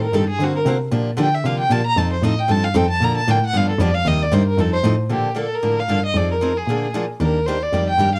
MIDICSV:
0, 0, Header, 1, 4, 480
1, 0, Start_track
1, 0, Key_signature, -2, "major"
1, 0, Tempo, 261666
1, 1689, Time_signature, 4, 2, 24, 8
1, 15033, End_track
2, 0, Start_track
2, 0, Title_t, "Violin"
2, 0, Program_c, 0, 40
2, 77, Note_on_c, 0, 70, 78
2, 284, Note_on_c, 0, 69, 72
2, 312, Note_off_c, 0, 70, 0
2, 535, Note_off_c, 0, 69, 0
2, 545, Note_on_c, 0, 68, 83
2, 805, Note_on_c, 0, 66, 71
2, 833, Note_off_c, 0, 68, 0
2, 1022, Note_off_c, 0, 66, 0
2, 1033, Note_on_c, 0, 70, 88
2, 1150, Note_off_c, 0, 70, 0
2, 2226, Note_on_c, 0, 79, 83
2, 2468, Note_on_c, 0, 76, 85
2, 2496, Note_off_c, 0, 79, 0
2, 2679, Note_on_c, 0, 77, 82
2, 2706, Note_off_c, 0, 76, 0
2, 2917, Note_off_c, 0, 77, 0
2, 2928, Note_on_c, 0, 79, 89
2, 3160, Note_on_c, 0, 81, 90
2, 3187, Note_off_c, 0, 79, 0
2, 3410, Note_off_c, 0, 81, 0
2, 3423, Note_on_c, 0, 82, 116
2, 3633, Note_on_c, 0, 81, 96
2, 3661, Note_off_c, 0, 82, 0
2, 3886, Note_off_c, 0, 81, 0
2, 3908, Note_on_c, 0, 72, 72
2, 4100, Note_on_c, 0, 75, 84
2, 4127, Note_off_c, 0, 72, 0
2, 4389, Note_on_c, 0, 79, 92
2, 4416, Note_off_c, 0, 75, 0
2, 4607, Note_on_c, 0, 81, 103
2, 4634, Note_off_c, 0, 79, 0
2, 4847, Note_on_c, 0, 77, 91
2, 4874, Note_off_c, 0, 81, 0
2, 5068, Note_on_c, 0, 79, 95
2, 5095, Note_off_c, 0, 77, 0
2, 5322, Note_off_c, 0, 79, 0
2, 5330, Note_on_c, 0, 81, 104
2, 5579, Note_on_c, 0, 82, 98
2, 5607, Note_off_c, 0, 81, 0
2, 5811, Note_off_c, 0, 82, 0
2, 5822, Note_on_c, 0, 81, 99
2, 6065, Note_on_c, 0, 79, 89
2, 6092, Note_off_c, 0, 81, 0
2, 6300, Note_off_c, 0, 79, 0
2, 6355, Note_on_c, 0, 78, 100
2, 6551, Note_on_c, 0, 77, 92
2, 6579, Note_off_c, 0, 78, 0
2, 6783, Note_off_c, 0, 77, 0
2, 6792, Note_on_c, 0, 69, 75
2, 6984, Note_on_c, 0, 74, 90
2, 7012, Note_off_c, 0, 69, 0
2, 7234, Note_on_c, 0, 77, 101
2, 7262, Note_off_c, 0, 74, 0
2, 7485, Note_on_c, 0, 75, 90
2, 7513, Note_off_c, 0, 77, 0
2, 7754, Note_on_c, 0, 74, 91
2, 7781, Note_off_c, 0, 75, 0
2, 7948, Note_on_c, 0, 72, 81
2, 7975, Note_off_c, 0, 74, 0
2, 8201, Note_off_c, 0, 72, 0
2, 8213, Note_on_c, 0, 70, 86
2, 8446, Note_on_c, 0, 69, 83
2, 8474, Note_off_c, 0, 70, 0
2, 8663, Note_off_c, 0, 69, 0
2, 8674, Note_on_c, 0, 72, 105
2, 8800, Note_off_c, 0, 72, 0
2, 9387, Note_on_c, 0, 67, 68
2, 9822, Note_off_c, 0, 67, 0
2, 9917, Note_on_c, 0, 69, 78
2, 10174, Note_on_c, 0, 70, 81
2, 10202, Note_off_c, 0, 69, 0
2, 10638, Note_on_c, 0, 77, 84
2, 10666, Note_off_c, 0, 70, 0
2, 11095, Note_off_c, 0, 77, 0
2, 11113, Note_on_c, 0, 75, 81
2, 11319, Note_on_c, 0, 74, 81
2, 11346, Note_off_c, 0, 75, 0
2, 11569, Note_off_c, 0, 74, 0
2, 11582, Note_on_c, 0, 70, 80
2, 12054, Note_on_c, 0, 68, 71
2, 12082, Note_off_c, 0, 70, 0
2, 12739, Note_off_c, 0, 68, 0
2, 13255, Note_on_c, 0, 70, 77
2, 13689, Note_on_c, 0, 72, 80
2, 13717, Note_off_c, 0, 70, 0
2, 13990, Note_on_c, 0, 74, 86
2, 14017, Note_off_c, 0, 72, 0
2, 14455, Note_off_c, 0, 74, 0
2, 14499, Note_on_c, 0, 79, 94
2, 14918, Note_off_c, 0, 79, 0
2, 14950, Note_on_c, 0, 77, 81
2, 15033, Note_off_c, 0, 77, 0
2, 15033, End_track
3, 0, Start_track
3, 0, Title_t, "Steel-string acoustic guitar"
3, 0, Program_c, 1, 25
3, 243, Note_on_c, 1, 51, 84
3, 258, Note_on_c, 1, 55, 81
3, 258, Note_on_c, 1, 60, 84
3, 262, Note_on_c, 1, 69, 89
3, 264, Note_on_c, 1, 67, 97
3, 430, Note_off_c, 1, 51, 0
3, 437, Note_off_c, 1, 60, 0
3, 438, Note_off_c, 1, 55, 0
3, 440, Note_off_c, 1, 67, 0
3, 440, Note_off_c, 1, 69, 0
3, 732, Note_on_c, 1, 50, 66
3, 738, Note_on_c, 1, 58, 66
3, 744, Note_on_c, 1, 60, 73
3, 748, Note_on_c, 1, 66, 62
3, 761, Note_on_c, 1, 72, 74
3, 1060, Note_off_c, 1, 50, 0
3, 1063, Note_off_c, 1, 58, 0
3, 1066, Note_off_c, 1, 60, 0
3, 1068, Note_off_c, 1, 66, 0
3, 1075, Note_off_c, 1, 72, 0
3, 1207, Note_on_c, 1, 50, 84
3, 1216, Note_on_c, 1, 58, 87
3, 1225, Note_on_c, 1, 60, 93
3, 1230, Note_on_c, 1, 66, 91
3, 1242, Note_on_c, 1, 72, 91
3, 1391, Note_off_c, 1, 50, 0
3, 1396, Note_off_c, 1, 58, 0
3, 1400, Note_off_c, 1, 60, 0
3, 1402, Note_off_c, 1, 66, 0
3, 1408, Note_off_c, 1, 72, 0
3, 1677, Note_on_c, 1, 50, 70
3, 1680, Note_on_c, 1, 53, 64
3, 1682, Note_on_c, 1, 58, 69
3, 1690, Note_on_c, 1, 62, 73
3, 1697, Note_on_c, 1, 67, 78
3, 2012, Note_off_c, 1, 50, 0
3, 2013, Note_off_c, 1, 53, 0
3, 2014, Note_off_c, 1, 58, 0
3, 2018, Note_off_c, 1, 62, 0
3, 2022, Note_off_c, 1, 67, 0
3, 2141, Note_on_c, 1, 50, 86
3, 2157, Note_on_c, 1, 53, 82
3, 2159, Note_on_c, 1, 58, 83
3, 2166, Note_on_c, 1, 62, 87
3, 2171, Note_on_c, 1, 67, 86
3, 2337, Note_off_c, 1, 50, 0
3, 2345, Note_off_c, 1, 53, 0
3, 2346, Note_off_c, 1, 58, 0
3, 2349, Note_off_c, 1, 62, 0
3, 2352, Note_off_c, 1, 67, 0
3, 2663, Note_on_c, 1, 50, 68
3, 2669, Note_on_c, 1, 58, 72
3, 2674, Note_on_c, 1, 53, 69
3, 2683, Note_on_c, 1, 67, 73
3, 2685, Note_on_c, 1, 62, 78
3, 2984, Note_off_c, 1, 50, 0
3, 2987, Note_off_c, 1, 58, 0
3, 2989, Note_off_c, 1, 53, 0
3, 2994, Note_off_c, 1, 67, 0
3, 2995, Note_off_c, 1, 62, 0
3, 3128, Note_on_c, 1, 50, 86
3, 3139, Note_on_c, 1, 53, 90
3, 3140, Note_on_c, 1, 58, 91
3, 3153, Note_on_c, 1, 62, 98
3, 3159, Note_on_c, 1, 67, 88
3, 3310, Note_off_c, 1, 50, 0
3, 3315, Note_off_c, 1, 53, 0
3, 3316, Note_off_c, 1, 58, 0
3, 3322, Note_off_c, 1, 62, 0
3, 3325, Note_off_c, 1, 67, 0
3, 3618, Note_on_c, 1, 53, 67
3, 3631, Note_on_c, 1, 60, 74
3, 3634, Note_on_c, 1, 63, 73
3, 3640, Note_on_c, 1, 69, 73
3, 3941, Note_off_c, 1, 53, 0
3, 3947, Note_off_c, 1, 60, 0
3, 3949, Note_off_c, 1, 63, 0
3, 3952, Note_off_c, 1, 69, 0
3, 4096, Note_on_c, 1, 53, 84
3, 4102, Note_on_c, 1, 60, 94
3, 4117, Note_on_c, 1, 63, 91
3, 4124, Note_on_c, 1, 69, 89
3, 4273, Note_off_c, 1, 53, 0
3, 4276, Note_off_c, 1, 60, 0
3, 4283, Note_off_c, 1, 63, 0
3, 4287, Note_off_c, 1, 69, 0
3, 4549, Note_on_c, 1, 53, 66
3, 4558, Note_on_c, 1, 60, 66
3, 4571, Note_on_c, 1, 63, 71
3, 4577, Note_on_c, 1, 69, 76
3, 4885, Note_off_c, 1, 53, 0
3, 4890, Note_off_c, 1, 60, 0
3, 4897, Note_off_c, 1, 63, 0
3, 4899, Note_off_c, 1, 69, 0
3, 5028, Note_on_c, 1, 53, 92
3, 5044, Note_on_c, 1, 60, 99
3, 5058, Note_on_c, 1, 69, 105
3, 5059, Note_on_c, 1, 63, 90
3, 5218, Note_off_c, 1, 53, 0
3, 5226, Note_off_c, 1, 60, 0
3, 5233, Note_off_c, 1, 69, 0
3, 5234, Note_off_c, 1, 63, 0
3, 5535, Note_on_c, 1, 50, 78
3, 5549, Note_on_c, 1, 58, 75
3, 5551, Note_on_c, 1, 53, 72
3, 5565, Note_on_c, 1, 62, 80
3, 5566, Note_on_c, 1, 69, 77
3, 5858, Note_off_c, 1, 50, 0
3, 5865, Note_off_c, 1, 58, 0
3, 5866, Note_off_c, 1, 53, 0
3, 5873, Note_off_c, 1, 62, 0
3, 5874, Note_off_c, 1, 69, 0
3, 6012, Note_on_c, 1, 50, 82
3, 6022, Note_on_c, 1, 53, 84
3, 6028, Note_on_c, 1, 58, 91
3, 6033, Note_on_c, 1, 62, 88
3, 6039, Note_on_c, 1, 69, 96
3, 6189, Note_off_c, 1, 50, 0
3, 6195, Note_off_c, 1, 53, 0
3, 6198, Note_off_c, 1, 58, 0
3, 6200, Note_off_c, 1, 62, 0
3, 6203, Note_off_c, 1, 69, 0
3, 6476, Note_on_c, 1, 50, 70
3, 6483, Note_on_c, 1, 53, 69
3, 6494, Note_on_c, 1, 67, 79
3, 6497, Note_on_c, 1, 59, 72
3, 6498, Note_on_c, 1, 62, 74
3, 6808, Note_off_c, 1, 50, 0
3, 6811, Note_off_c, 1, 53, 0
3, 6817, Note_off_c, 1, 67, 0
3, 6818, Note_off_c, 1, 59, 0
3, 6819, Note_off_c, 1, 62, 0
3, 6964, Note_on_c, 1, 50, 89
3, 6972, Note_on_c, 1, 53, 91
3, 6979, Note_on_c, 1, 59, 92
3, 6990, Note_on_c, 1, 62, 96
3, 7003, Note_on_c, 1, 67, 102
3, 7145, Note_off_c, 1, 50, 0
3, 7149, Note_off_c, 1, 53, 0
3, 7153, Note_off_c, 1, 59, 0
3, 7158, Note_off_c, 1, 62, 0
3, 7165, Note_off_c, 1, 67, 0
3, 7443, Note_on_c, 1, 48, 75
3, 7448, Note_on_c, 1, 58, 79
3, 7451, Note_on_c, 1, 55, 66
3, 7463, Note_on_c, 1, 63, 73
3, 7469, Note_on_c, 1, 67, 79
3, 7771, Note_off_c, 1, 48, 0
3, 7774, Note_off_c, 1, 58, 0
3, 7775, Note_off_c, 1, 55, 0
3, 7781, Note_off_c, 1, 63, 0
3, 7784, Note_off_c, 1, 67, 0
3, 7916, Note_on_c, 1, 48, 85
3, 7931, Note_on_c, 1, 55, 85
3, 7934, Note_on_c, 1, 58, 93
3, 7941, Note_on_c, 1, 63, 101
3, 7950, Note_on_c, 1, 67, 90
3, 8101, Note_off_c, 1, 48, 0
3, 8108, Note_off_c, 1, 55, 0
3, 8110, Note_off_c, 1, 58, 0
3, 8114, Note_off_c, 1, 63, 0
3, 8118, Note_off_c, 1, 67, 0
3, 8409, Note_on_c, 1, 53, 69
3, 8413, Note_on_c, 1, 60, 76
3, 8426, Note_on_c, 1, 63, 72
3, 8440, Note_on_c, 1, 69, 73
3, 8734, Note_off_c, 1, 53, 0
3, 8737, Note_off_c, 1, 60, 0
3, 8743, Note_off_c, 1, 63, 0
3, 8750, Note_off_c, 1, 69, 0
3, 8873, Note_on_c, 1, 53, 91
3, 8884, Note_on_c, 1, 60, 95
3, 8898, Note_on_c, 1, 69, 105
3, 8899, Note_on_c, 1, 63, 97
3, 9060, Note_off_c, 1, 53, 0
3, 9065, Note_off_c, 1, 60, 0
3, 9073, Note_off_c, 1, 63, 0
3, 9073, Note_off_c, 1, 69, 0
3, 9343, Note_on_c, 1, 50, 60
3, 9349, Note_on_c, 1, 53, 63
3, 9357, Note_on_c, 1, 58, 57
3, 9361, Note_on_c, 1, 69, 67
3, 9368, Note_on_c, 1, 62, 58
3, 9682, Note_off_c, 1, 50, 0
3, 9685, Note_off_c, 1, 53, 0
3, 9689, Note_off_c, 1, 58, 0
3, 9691, Note_off_c, 1, 69, 0
3, 9695, Note_off_c, 1, 62, 0
3, 9806, Note_on_c, 1, 50, 67
3, 9823, Note_on_c, 1, 53, 67
3, 9831, Note_on_c, 1, 58, 74
3, 9838, Note_on_c, 1, 62, 78
3, 9841, Note_on_c, 1, 69, 73
3, 10007, Note_off_c, 1, 50, 0
3, 10015, Note_off_c, 1, 53, 0
3, 10019, Note_off_c, 1, 58, 0
3, 10023, Note_off_c, 1, 62, 0
3, 10024, Note_off_c, 1, 69, 0
3, 10318, Note_on_c, 1, 50, 55
3, 10320, Note_on_c, 1, 58, 66
3, 10322, Note_on_c, 1, 53, 65
3, 10325, Note_on_c, 1, 62, 59
3, 10342, Note_on_c, 1, 69, 60
3, 10650, Note_off_c, 1, 50, 0
3, 10651, Note_off_c, 1, 58, 0
3, 10652, Note_off_c, 1, 53, 0
3, 10654, Note_off_c, 1, 62, 0
3, 10662, Note_off_c, 1, 69, 0
3, 10797, Note_on_c, 1, 50, 73
3, 10805, Note_on_c, 1, 53, 79
3, 10807, Note_on_c, 1, 62, 81
3, 10812, Note_on_c, 1, 58, 81
3, 10813, Note_on_c, 1, 69, 78
3, 10983, Note_off_c, 1, 50, 0
3, 10987, Note_off_c, 1, 53, 0
3, 10988, Note_off_c, 1, 62, 0
3, 10991, Note_off_c, 1, 58, 0
3, 10991, Note_off_c, 1, 69, 0
3, 11299, Note_on_c, 1, 53, 60
3, 11310, Note_on_c, 1, 60, 67
3, 11315, Note_on_c, 1, 63, 63
3, 11327, Note_on_c, 1, 68, 63
3, 11622, Note_off_c, 1, 53, 0
3, 11627, Note_off_c, 1, 60, 0
3, 11630, Note_off_c, 1, 63, 0
3, 11635, Note_off_c, 1, 68, 0
3, 11762, Note_on_c, 1, 53, 76
3, 11781, Note_on_c, 1, 60, 77
3, 11783, Note_on_c, 1, 63, 80
3, 11790, Note_on_c, 1, 68, 76
3, 11947, Note_off_c, 1, 53, 0
3, 11956, Note_off_c, 1, 60, 0
3, 11957, Note_off_c, 1, 63, 0
3, 11961, Note_off_c, 1, 68, 0
3, 12268, Note_on_c, 1, 50, 62
3, 12273, Note_on_c, 1, 53, 64
3, 12287, Note_on_c, 1, 58, 59
3, 12291, Note_on_c, 1, 62, 62
3, 12296, Note_on_c, 1, 68, 67
3, 12587, Note_off_c, 1, 50, 0
3, 12590, Note_off_c, 1, 53, 0
3, 12597, Note_off_c, 1, 58, 0
3, 12599, Note_off_c, 1, 62, 0
3, 12601, Note_off_c, 1, 68, 0
3, 12733, Note_on_c, 1, 53, 81
3, 12735, Note_on_c, 1, 50, 74
3, 12751, Note_on_c, 1, 62, 87
3, 12752, Note_on_c, 1, 58, 76
3, 12752, Note_on_c, 1, 68, 77
3, 12913, Note_off_c, 1, 53, 0
3, 12914, Note_off_c, 1, 50, 0
3, 12923, Note_off_c, 1, 58, 0
3, 12923, Note_off_c, 1, 62, 0
3, 12923, Note_off_c, 1, 68, 0
3, 13207, Note_on_c, 1, 51, 60
3, 13209, Note_on_c, 1, 55, 64
3, 13212, Note_on_c, 1, 58, 62
3, 13218, Note_on_c, 1, 62, 62
3, 13228, Note_on_c, 1, 67, 68
3, 13538, Note_off_c, 1, 51, 0
3, 13539, Note_off_c, 1, 55, 0
3, 13540, Note_off_c, 1, 58, 0
3, 13543, Note_off_c, 1, 62, 0
3, 13549, Note_off_c, 1, 67, 0
3, 13716, Note_on_c, 1, 55, 77
3, 13718, Note_on_c, 1, 51, 74
3, 13728, Note_on_c, 1, 58, 75
3, 13735, Note_on_c, 1, 62, 76
3, 13739, Note_on_c, 1, 67, 80
3, 13886, Note_off_c, 1, 55, 0
3, 13887, Note_off_c, 1, 51, 0
3, 13892, Note_off_c, 1, 58, 0
3, 13895, Note_off_c, 1, 62, 0
3, 13897, Note_off_c, 1, 67, 0
3, 14175, Note_on_c, 1, 51, 64
3, 14183, Note_on_c, 1, 55, 64
3, 14193, Note_on_c, 1, 58, 62
3, 14193, Note_on_c, 1, 62, 67
3, 14208, Note_on_c, 1, 67, 66
3, 14503, Note_off_c, 1, 51, 0
3, 14507, Note_off_c, 1, 55, 0
3, 14512, Note_off_c, 1, 58, 0
3, 14512, Note_off_c, 1, 62, 0
3, 14519, Note_off_c, 1, 67, 0
3, 14646, Note_on_c, 1, 51, 72
3, 14662, Note_on_c, 1, 55, 84
3, 14670, Note_on_c, 1, 58, 71
3, 14679, Note_on_c, 1, 62, 81
3, 14683, Note_on_c, 1, 67, 90
3, 14832, Note_off_c, 1, 51, 0
3, 14840, Note_off_c, 1, 55, 0
3, 14844, Note_off_c, 1, 58, 0
3, 14848, Note_off_c, 1, 62, 0
3, 14850, Note_off_c, 1, 67, 0
3, 15033, End_track
4, 0, Start_track
4, 0, Title_t, "Cello"
4, 0, Program_c, 2, 42
4, 0, Note_on_c, 2, 45, 84
4, 222, Note_off_c, 2, 45, 0
4, 233, Note_on_c, 2, 43, 83
4, 490, Note_off_c, 2, 43, 0
4, 504, Note_on_c, 2, 43, 39
4, 703, Note_off_c, 2, 43, 0
4, 714, Note_on_c, 2, 50, 81
4, 1184, Note_off_c, 2, 50, 0
4, 1195, Note_on_c, 2, 48, 92
4, 1667, Note_off_c, 2, 48, 0
4, 1691, Note_on_c, 2, 46, 84
4, 2151, Note_off_c, 2, 46, 0
4, 2162, Note_on_c, 2, 50, 90
4, 2630, Note_off_c, 2, 50, 0
4, 2646, Note_on_c, 2, 48, 82
4, 3107, Note_off_c, 2, 48, 0
4, 3118, Note_on_c, 2, 46, 92
4, 3587, Note_off_c, 2, 46, 0
4, 3608, Note_on_c, 2, 41, 91
4, 4066, Note_off_c, 2, 41, 0
4, 4077, Note_on_c, 2, 45, 90
4, 4546, Note_off_c, 2, 45, 0
4, 4566, Note_on_c, 2, 43, 81
4, 5031, Note_off_c, 2, 43, 0
4, 5042, Note_on_c, 2, 41, 98
4, 5504, Note_off_c, 2, 41, 0
4, 5515, Note_on_c, 2, 46, 86
4, 5984, Note_off_c, 2, 46, 0
4, 6012, Note_on_c, 2, 45, 94
4, 6255, Note_off_c, 2, 45, 0
4, 6273, Note_on_c, 2, 45, 42
4, 6470, Note_off_c, 2, 45, 0
4, 6489, Note_on_c, 2, 43, 85
4, 6942, Note_off_c, 2, 43, 0
4, 6953, Note_on_c, 2, 41, 101
4, 7205, Note_off_c, 2, 41, 0
4, 7238, Note_on_c, 2, 41, 44
4, 7426, Note_off_c, 2, 41, 0
4, 7437, Note_on_c, 2, 39, 91
4, 7905, Note_off_c, 2, 39, 0
4, 7929, Note_on_c, 2, 43, 100
4, 8386, Note_off_c, 2, 43, 0
4, 8397, Note_on_c, 2, 41, 91
4, 8860, Note_off_c, 2, 41, 0
4, 8871, Note_on_c, 2, 45, 103
4, 9342, Note_off_c, 2, 45, 0
4, 9354, Note_on_c, 2, 46, 80
4, 10126, Note_off_c, 2, 46, 0
4, 10330, Note_on_c, 2, 45, 71
4, 10736, Note_off_c, 2, 45, 0
4, 10797, Note_on_c, 2, 43, 69
4, 11209, Note_off_c, 2, 43, 0
4, 11271, Note_on_c, 2, 41, 82
4, 12047, Note_off_c, 2, 41, 0
4, 12233, Note_on_c, 2, 46, 77
4, 13008, Note_off_c, 2, 46, 0
4, 13206, Note_on_c, 2, 39, 84
4, 13977, Note_off_c, 2, 39, 0
4, 14176, Note_on_c, 2, 41, 73
4, 14583, Note_off_c, 2, 41, 0
4, 14641, Note_on_c, 2, 43, 80
4, 15033, Note_off_c, 2, 43, 0
4, 15033, End_track
0, 0, End_of_file